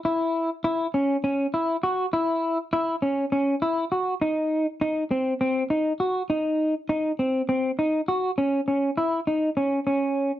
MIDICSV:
0, 0, Header, 1, 2, 480
1, 0, Start_track
1, 0, Tempo, 595238
1, 36, Time_signature, 7, 3, 24, 8
1, 8385, End_track
2, 0, Start_track
2, 0, Title_t, "Clean electric guitar"
2, 0, Program_c, 0, 27
2, 40, Note_on_c, 0, 64, 78
2, 397, Note_off_c, 0, 64, 0
2, 519, Note_on_c, 0, 64, 72
2, 697, Note_off_c, 0, 64, 0
2, 759, Note_on_c, 0, 61, 70
2, 937, Note_off_c, 0, 61, 0
2, 999, Note_on_c, 0, 61, 73
2, 1177, Note_off_c, 0, 61, 0
2, 1240, Note_on_c, 0, 64, 65
2, 1418, Note_off_c, 0, 64, 0
2, 1479, Note_on_c, 0, 66, 69
2, 1657, Note_off_c, 0, 66, 0
2, 1719, Note_on_c, 0, 64, 77
2, 2076, Note_off_c, 0, 64, 0
2, 2200, Note_on_c, 0, 64, 74
2, 2378, Note_off_c, 0, 64, 0
2, 2437, Note_on_c, 0, 61, 68
2, 2616, Note_off_c, 0, 61, 0
2, 2678, Note_on_c, 0, 61, 72
2, 2857, Note_off_c, 0, 61, 0
2, 2919, Note_on_c, 0, 64, 69
2, 3097, Note_off_c, 0, 64, 0
2, 3159, Note_on_c, 0, 66, 69
2, 3337, Note_off_c, 0, 66, 0
2, 3399, Note_on_c, 0, 63, 79
2, 3755, Note_off_c, 0, 63, 0
2, 3882, Note_on_c, 0, 63, 75
2, 4058, Note_off_c, 0, 63, 0
2, 4122, Note_on_c, 0, 60, 77
2, 4298, Note_off_c, 0, 60, 0
2, 4361, Note_on_c, 0, 60, 79
2, 4537, Note_off_c, 0, 60, 0
2, 4598, Note_on_c, 0, 63, 74
2, 4776, Note_off_c, 0, 63, 0
2, 4838, Note_on_c, 0, 66, 68
2, 5015, Note_off_c, 0, 66, 0
2, 5078, Note_on_c, 0, 63, 81
2, 5434, Note_off_c, 0, 63, 0
2, 5559, Note_on_c, 0, 63, 74
2, 5735, Note_off_c, 0, 63, 0
2, 5800, Note_on_c, 0, 60, 72
2, 5976, Note_off_c, 0, 60, 0
2, 6038, Note_on_c, 0, 60, 76
2, 6215, Note_off_c, 0, 60, 0
2, 6279, Note_on_c, 0, 63, 68
2, 6455, Note_off_c, 0, 63, 0
2, 6518, Note_on_c, 0, 66, 69
2, 6695, Note_off_c, 0, 66, 0
2, 6757, Note_on_c, 0, 61, 66
2, 6934, Note_off_c, 0, 61, 0
2, 6998, Note_on_c, 0, 61, 57
2, 7174, Note_off_c, 0, 61, 0
2, 7237, Note_on_c, 0, 64, 58
2, 7414, Note_off_c, 0, 64, 0
2, 7477, Note_on_c, 0, 63, 55
2, 7654, Note_off_c, 0, 63, 0
2, 7716, Note_on_c, 0, 61, 62
2, 7893, Note_off_c, 0, 61, 0
2, 7956, Note_on_c, 0, 61, 53
2, 8312, Note_off_c, 0, 61, 0
2, 8385, End_track
0, 0, End_of_file